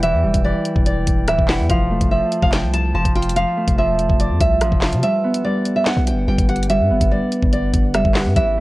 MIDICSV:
0, 0, Header, 1, 6, 480
1, 0, Start_track
1, 0, Tempo, 416667
1, 36, Time_signature, 4, 2, 24, 8
1, 9909, End_track
2, 0, Start_track
2, 0, Title_t, "Nylon-string guitar"
2, 0, Program_c, 0, 24
2, 36, Note_on_c, 0, 76, 102
2, 487, Note_off_c, 0, 76, 0
2, 515, Note_on_c, 0, 74, 85
2, 967, Note_off_c, 0, 74, 0
2, 995, Note_on_c, 0, 74, 75
2, 1446, Note_off_c, 0, 74, 0
2, 1476, Note_on_c, 0, 76, 88
2, 1683, Note_off_c, 0, 76, 0
2, 1715, Note_on_c, 0, 78, 71
2, 1923, Note_off_c, 0, 78, 0
2, 1957, Note_on_c, 0, 77, 86
2, 2408, Note_off_c, 0, 77, 0
2, 2434, Note_on_c, 0, 76, 81
2, 2773, Note_off_c, 0, 76, 0
2, 2797, Note_on_c, 0, 77, 92
2, 2900, Note_off_c, 0, 77, 0
2, 2917, Note_on_c, 0, 79, 97
2, 3124, Note_off_c, 0, 79, 0
2, 3155, Note_on_c, 0, 81, 91
2, 3363, Note_off_c, 0, 81, 0
2, 3397, Note_on_c, 0, 81, 91
2, 3604, Note_off_c, 0, 81, 0
2, 3635, Note_on_c, 0, 79, 81
2, 3843, Note_off_c, 0, 79, 0
2, 3875, Note_on_c, 0, 77, 107
2, 4326, Note_off_c, 0, 77, 0
2, 4357, Note_on_c, 0, 76, 86
2, 4807, Note_off_c, 0, 76, 0
2, 4837, Note_on_c, 0, 74, 82
2, 5044, Note_off_c, 0, 74, 0
2, 5076, Note_on_c, 0, 76, 81
2, 5753, Note_off_c, 0, 76, 0
2, 5796, Note_on_c, 0, 76, 98
2, 6247, Note_off_c, 0, 76, 0
2, 6274, Note_on_c, 0, 74, 90
2, 6613, Note_off_c, 0, 74, 0
2, 6635, Note_on_c, 0, 76, 70
2, 6739, Note_off_c, 0, 76, 0
2, 6754, Note_on_c, 0, 78, 94
2, 6963, Note_off_c, 0, 78, 0
2, 6997, Note_on_c, 0, 79, 89
2, 7204, Note_off_c, 0, 79, 0
2, 7236, Note_on_c, 0, 79, 83
2, 7443, Note_off_c, 0, 79, 0
2, 7474, Note_on_c, 0, 78, 70
2, 7683, Note_off_c, 0, 78, 0
2, 7715, Note_on_c, 0, 76, 107
2, 8166, Note_off_c, 0, 76, 0
2, 8197, Note_on_c, 0, 74, 84
2, 8647, Note_off_c, 0, 74, 0
2, 8675, Note_on_c, 0, 74, 75
2, 9127, Note_off_c, 0, 74, 0
2, 9156, Note_on_c, 0, 76, 89
2, 9363, Note_off_c, 0, 76, 0
2, 9396, Note_on_c, 0, 78, 71
2, 9603, Note_off_c, 0, 78, 0
2, 9634, Note_on_c, 0, 76, 106
2, 9909, Note_off_c, 0, 76, 0
2, 9909, End_track
3, 0, Start_track
3, 0, Title_t, "Glass harmonica"
3, 0, Program_c, 1, 92
3, 0, Note_on_c, 1, 64, 72
3, 0, Note_on_c, 1, 71, 64
3, 0, Note_on_c, 1, 74, 64
3, 0, Note_on_c, 1, 79, 78
3, 1917, Note_off_c, 1, 64, 0
3, 1917, Note_off_c, 1, 71, 0
3, 1917, Note_off_c, 1, 74, 0
3, 1917, Note_off_c, 1, 79, 0
3, 1955, Note_on_c, 1, 81, 77
3, 1956, Note_on_c, 1, 65, 73
3, 1956, Note_on_c, 1, 72, 65
3, 5757, Note_off_c, 1, 65, 0
3, 5757, Note_off_c, 1, 72, 0
3, 5757, Note_off_c, 1, 81, 0
3, 5795, Note_on_c, 1, 55, 72
3, 5795, Note_on_c, 1, 62, 66
3, 5795, Note_on_c, 1, 71, 79
3, 5795, Note_on_c, 1, 78, 64
3, 9597, Note_off_c, 1, 55, 0
3, 9597, Note_off_c, 1, 62, 0
3, 9597, Note_off_c, 1, 71, 0
3, 9597, Note_off_c, 1, 78, 0
3, 9636, Note_on_c, 1, 57, 70
3, 9636, Note_on_c, 1, 69, 66
3, 9636, Note_on_c, 1, 72, 65
3, 9909, Note_off_c, 1, 57, 0
3, 9909, Note_off_c, 1, 69, 0
3, 9909, Note_off_c, 1, 72, 0
3, 9909, End_track
4, 0, Start_track
4, 0, Title_t, "Harp"
4, 0, Program_c, 2, 46
4, 0, Note_on_c, 2, 55, 84
4, 0, Note_on_c, 2, 57, 77
4, 0, Note_on_c, 2, 64, 88
4, 32, Note_on_c, 2, 52, 100
4, 263, Note_off_c, 2, 55, 0
4, 268, Note_off_c, 2, 57, 0
4, 277, Note_on_c, 2, 55, 80
4, 505, Note_off_c, 2, 52, 0
4, 519, Note_on_c, 2, 52, 81
4, 1462, Note_off_c, 2, 52, 0
4, 1476, Note_on_c, 2, 52, 86
4, 1709, Note_off_c, 2, 64, 0
4, 1714, Note_on_c, 2, 64, 99
4, 1956, Note_on_c, 2, 53, 99
4, 2013, Note_off_c, 2, 52, 0
4, 2013, Note_off_c, 2, 55, 0
4, 2025, Note_off_c, 2, 64, 0
4, 2198, Note_on_c, 2, 57, 81
4, 2424, Note_off_c, 2, 53, 0
4, 2438, Note_on_c, 2, 53, 83
4, 3377, Note_off_c, 2, 53, 0
4, 3391, Note_on_c, 2, 53, 84
4, 3637, Note_on_c, 2, 65, 90
4, 3862, Note_off_c, 2, 53, 0
4, 3876, Note_on_c, 2, 53, 91
4, 4108, Note_off_c, 2, 57, 0
4, 4113, Note_on_c, 2, 57, 77
4, 4338, Note_off_c, 2, 53, 0
4, 4352, Note_on_c, 2, 53, 85
4, 5302, Note_off_c, 2, 53, 0
4, 5316, Note_on_c, 2, 53, 83
4, 5554, Note_off_c, 2, 65, 0
4, 5559, Note_on_c, 2, 65, 85
4, 5792, Note_on_c, 2, 55, 100
4, 5853, Note_off_c, 2, 53, 0
4, 6036, Note_on_c, 2, 59, 84
4, 6262, Note_off_c, 2, 55, 0
4, 6276, Note_on_c, 2, 55, 91
4, 7221, Note_off_c, 2, 55, 0
4, 7235, Note_on_c, 2, 55, 85
4, 7478, Note_on_c, 2, 67, 85
4, 7705, Note_off_c, 2, 55, 0
4, 7719, Note_on_c, 2, 55, 99
4, 7948, Note_off_c, 2, 57, 0
4, 7949, Note_off_c, 2, 59, 0
4, 7954, Note_on_c, 2, 59, 82
4, 8179, Note_off_c, 2, 55, 0
4, 8193, Note_on_c, 2, 55, 84
4, 8465, Note_off_c, 2, 65, 0
4, 9145, Note_off_c, 2, 55, 0
4, 9159, Note_on_c, 2, 55, 94
4, 9392, Note_off_c, 2, 67, 0
4, 9397, Note_on_c, 2, 67, 90
4, 9638, Note_on_c, 2, 52, 103
4, 9693, Note_off_c, 2, 55, 0
4, 9909, Note_off_c, 2, 52, 0
4, 9909, Note_off_c, 2, 59, 0
4, 9909, Note_off_c, 2, 67, 0
4, 9909, End_track
5, 0, Start_track
5, 0, Title_t, "808-style bass"
5, 0, Program_c, 3, 38
5, 0, Note_on_c, 3, 28, 103
5, 156, Note_on_c, 3, 40, 100
5, 173, Note_off_c, 3, 28, 0
5, 276, Note_on_c, 3, 28, 104
5, 294, Note_off_c, 3, 40, 0
5, 390, Note_off_c, 3, 28, 0
5, 396, Note_on_c, 3, 28, 107
5, 626, Note_off_c, 3, 28, 0
5, 876, Note_on_c, 3, 28, 103
5, 1221, Note_off_c, 3, 28, 0
5, 1235, Note_on_c, 3, 28, 103
5, 1476, Note_on_c, 3, 26, 101
5, 1493, Note_off_c, 3, 28, 0
5, 1590, Note_off_c, 3, 26, 0
5, 1596, Note_on_c, 3, 28, 104
5, 1836, Note_on_c, 3, 40, 106
5, 1853, Note_off_c, 3, 28, 0
5, 1950, Note_off_c, 3, 40, 0
5, 1956, Note_on_c, 3, 29, 107
5, 2195, Note_on_c, 3, 28, 100
5, 2213, Note_off_c, 3, 29, 0
5, 2309, Note_off_c, 3, 28, 0
5, 2316, Note_on_c, 3, 29, 104
5, 2546, Note_off_c, 3, 29, 0
5, 2796, Note_on_c, 3, 29, 110
5, 3035, Note_on_c, 3, 36, 101
5, 3053, Note_off_c, 3, 29, 0
5, 3377, Note_off_c, 3, 36, 0
5, 3396, Note_on_c, 3, 29, 106
5, 3511, Note_off_c, 3, 29, 0
5, 3516, Note_on_c, 3, 29, 104
5, 3976, Note_off_c, 3, 29, 0
5, 4236, Note_on_c, 3, 29, 110
5, 4476, Note_on_c, 3, 28, 99
5, 4493, Note_off_c, 3, 29, 0
5, 4596, Note_on_c, 3, 29, 103
5, 4613, Note_off_c, 3, 28, 0
5, 4709, Note_off_c, 3, 29, 0
5, 4716, Note_on_c, 3, 29, 110
5, 4956, Note_on_c, 3, 41, 100
5, 4973, Note_off_c, 3, 29, 0
5, 5070, Note_off_c, 3, 41, 0
5, 5075, Note_on_c, 3, 36, 102
5, 5316, Note_on_c, 3, 33, 100
5, 5333, Note_off_c, 3, 36, 0
5, 5430, Note_off_c, 3, 33, 0
5, 5436, Note_on_c, 3, 29, 108
5, 5676, Note_on_c, 3, 48, 100
5, 5693, Note_off_c, 3, 29, 0
5, 5790, Note_off_c, 3, 48, 0
5, 6875, Note_on_c, 3, 35, 103
5, 7055, Note_on_c, 3, 31, 96
5, 7072, Note_off_c, 3, 35, 0
5, 7226, Note_off_c, 3, 31, 0
5, 7235, Note_on_c, 3, 31, 107
5, 7351, Note_off_c, 3, 31, 0
5, 7356, Note_on_c, 3, 31, 107
5, 7836, Note_on_c, 3, 43, 97
5, 7853, Note_off_c, 3, 31, 0
5, 7955, Note_on_c, 3, 31, 100
5, 7972, Note_off_c, 3, 43, 0
5, 8069, Note_off_c, 3, 31, 0
5, 8075, Note_on_c, 3, 31, 108
5, 8306, Note_off_c, 3, 31, 0
5, 8556, Note_on_c, 3, 31, 107
5, 8901, Note_off_c, 3, 31, 0
5, 8915, Note_on_c, 3, 31, 107
5, 9155, Note_on_c, 3, 30, 99
5, 9172, Note_off_c, 3, 31, 0
5, 9269, Note_off_c, 3, 30, 0
5, 9276, Note_on_c, 3, 31, 108
5, 9515, Note_on_c, 3, 43, 102
5, 9533, Note_off_c, 3, 31, 0
5, 9629, Note_off_c, 3, 43, 0
5, 9635, Note_on_c, 3, 33, 111
5, 9893, Note_off_c, 3, 33, 0
5, 9909, End_track
6, 0, Start_track
6, 0, Title_t, "Drums"
6, 35, Note_on_c, 9, 42, 82
6, 150, Note_off_c, 9, 42, 0
6, 395, Note_on_c, 9, 36, 85
6, 396, Note_on_c, 9, 42, 91
6, 511, Note_off_c, 9, 36, 0
6, 512, Note_off_c, 9, 42, 0
6, 754, Note_on_c, 9, 42, 63
6, 869, Note_off_c, 9, 42, 0
6, 876, Note_on_c, 9, 36, 102
6, 991, Note_off_c, 9, 36, 0
6, 994, Note_on_c, 9, 42, 79
6, 1109, Note_off_c, 9, 42, 0
6, 1234, Note_on_c, 9, 42, 93
6, 1236, Note_on_c, 9, 36, 97
6, 1350, Note_off_c, 9, 42, 0
6, 1351, Note_off_c, 9, 36, 0
6, 1471, Note_on_c, 9, 42, 87
6, 1475, Note_on_c, 9, 37, 103
6, 1586, Note_off_c, 9, 42, 0
6, 1590, Note_off_c, 9, 37, 0
6, 1596, Note_on_c, 9, 36, 96
6, 1711, Note_off_c, 9, 36, 0
6, 1712, Note_on_c, 9, 39, 97
6, 1714, Note_on_c, 9, 38, 117
6, 1716, Note_on_c, 9, 46, 58
6, 1827, Note_off_c, 9, 39, 0
6, 1829, Note_off_c, 9, 38, 0
6, 1832, Note_off_c, 9, 46, 0
6, 1955, Note_on_c, 9, 36, 110
6, 1955, Note_on_c, 9, 42, 82
6, 2070, Note_off_c, 9, 42, 0
6, 2071, Note_off_c, 9, 36, 0
6, 2316, Note_on_c, 9, 36, 86
6, 2316, Note_on_c, 9, 42, 91
6, 2431, Note_off_c, 9, 36, 0
6, 2432, Note_off_c, 9, 42, 0
6, 2674, Note_on_c, 9, 42, 63
6, 2789, Note_off_c, 9, 42, 0
6, 2796, Note_on_c, 9, 36, 102
6, 2911, Note_off_c, 9, 36, 0
6, 2913, Note_on_c, 9, 39, 97
6, 2914, Note_on_c, 9, 42, 77
6, 2915, Note_on_c, 9, 38, 122
6, 3028, Note_off_c, 9, 39, 0
6, 3030, Note_off_c, 9, 42, 0
6, 3031, Note_off_c, 9, 38, 0
6, 3155, Note_on_c, 9, 42, 93
6, 3270, Note_off_c, 9, 42, 0
6, 3516, Note_on_c, 9, 36, 95
6, 3518, Note_on_c, 9, 42, 78
6, 3631, Note_off_c, 9, 36, 0
6, 3633, Note_off_c, 9, 42, 0
6, 3636, Note_on_c, 9, 42, 47
6, 3716, Note_off_c, 9, 42, 0
6, 3716, Note_on_c, 9, 42, 63
6, 3795, Note_off_c, 9, 42, 0
6, 3795, Note_on_c, 9, 42, 80
6, 3875, Note_off_c, 9, 42, 0
6, 3875, Note_on_c, 9, 42, 84
6, 3990, Note_off_c, 9, 42, 0
6, 4235, Note_on_c, 9, 36, 90
6, 4236, Note_on_c, 9, 42, 84
6, 4351, Note_off_c, 9, 36, 0
6, 4351, Note_off_c, 9, 42, 0
6, 4594, Note_on_c, 9, 42, 63
6, 4709, Note_off_c, 9, 42, 0
6, 4716, Note_on_c, 9, 36, 104
6, 4831, Note_off_c, 9, 36, 0
6, 4834, Note_on_c, 9, 42, 81
6, 4949, Note_off_c, 9, 42, 0
6, 5074, Note_on_c, 9, 42, 96
6, 5075, Note_on_c, 9, 36, 95
6, 5189, Note_off_c, 9, 42, 0
6, 5190, Note_off_c, 9, 36, 0
6, 5311, Note_on_c, 9, 42, 85
6, 5315, Note_on_c, 9, 37, 106
6, 5426, Note_off_c, 9, 42, 0
6, 5430, Note_off_c, 9, 37, 0
6, 5436, Note_on_c, 9, 36, 94
6, 5551, Note_off_c, 9, 36, 0
6, 5552, Note_on_c, 9, 39, 96
6, 5554, Note_on_c, 9, 38, 122
6, 5555, Note_on_c, 9, 42, 47
6, 5556, Note_on_c, 9, 46, 59
6, 5667, Note_off_c, 9, 39, 0
6, 5669, Note_off_c, 9, 38, 0
6, 5670, Note_off_c, 9, 42, 0
6, 5672, Note_off_c, 9, 46, 0
6, 5675, Note_on_c, 9, 42, 82
6, 5791, Note_off_c, 9, 42, 0
6, 5795, Note_on_c, 9, 42, 83
6, 5910, Note_off_c, 9, 42, 0
6, 6156, Note_on_c, 9, 42, 86
6, 6271, Note_off_c, 9, 42, 0
6, 6514, Note_on_c, 9, 42, 60
6, 6629, Note_off_c, 9, 42, 0
6, 6752, Note_on_c, 9, 39, 94
6, 6754, Note_on_c, 9, 42, 80
6, 6755, Note_on_c, 9, 38, 122
6, 6867, Note_off_c, 9, 39, 0
6, 6869, Note_off_c, 9, 42, 0
6, 6870, Note_off_c, 9, 38, 0
6, 6994, Note_on_c, 9, 42, 90
6, 7109, Note_off_c, 9, 42, 0
6, 7356, Note_on_c, 9, 36, 93
6, 7357, Note_on_c, 9, 42, 80
6, 7471, Note_off_c, 9, 36, 0
6, 7473, Note_off_c, 9, 42, 0
6, 7476, Note_on_c, 9, 42, 48
6, 7556, Note_off_c, 9, 42, 0
6, 7556, Note_on_c, 9, 42, 63
6, 7635, Note_off_c, 9, 42, 0
6, 7635, Note_on_c, 9, 42, 84
6, 7715, Note_off_c, 9, 42, 0
6, 7715, Note_on_c, 9, 42, 82
6, 7830, Note_off_c, 9, 42, 0
6, 8075, Note_on_c, 9, 36, 90
6, 8076, Note_on_c, 9, 42, 86
6, 8190, Note_off_c, 9, 36, 0
6, 8191, Note_off_c, 9, 42, 0
6, 8434, Note_on_c, 9, 42, 62
6, 8549, Note_off_c, 9, 42, 0
6, 8556, Note_on_c, 9, 36, 102
6, 8671, Note_off_c, 9, 36, 0
6, 8674, Note_on_c, 9, 42, 82
6, 8789, Note_off_c, 9, 42, 0
6, 8914, Note_on_c, 9, 42, 94
6, 8915, Note_on_c, 9, 36, 93
6, 9029, Note_off_c, 9, 42, 0
6, 9030, Note_off_c, 9, 36, 0
6, 9151, Note_on_c, 9, 42, 86
6, 9155, Note_on_c, 9, 37, 105
6, 9266, Note_off_c, 9, 42, 0
6, 9270, Note_off_c, 9, 37, 0
6, 9276, Note_on_c, 9, 36, 96
6, 9391, Note_off_c, 9, 36, 0
6, 9392, Note_on_c, 9, 39, 94
6, 9394, Note_on_c, 9, 38, 118
6, 9396, Note_on_c, 9, 46, 61
6, 9507, Note_off_c, 9, 39, 0
6, 9509, Note_off_c, 9, 38, 0
6, 9512, Note_off_c, 9, 46, 0
6, 9634, Note_on_c, 9, 42, 81
6, 9635, Note_on_c, 9, 36, 112
6, 9750, Note_off_c, 9, 36, 0
6, 9750, Note_off_c, 9, 42, 0
6, 9909, End_track
0, 0, End_of_file